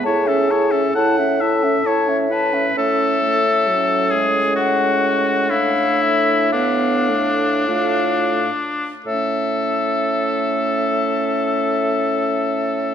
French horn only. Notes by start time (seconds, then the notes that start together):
0.05 G#4
0.96 A4
2.77 A3
3.22 A3
3.69 F#3
4.13 G#3
5.51 A3
6.54 B3
7.09 A3
7.69 A3
9.08 A3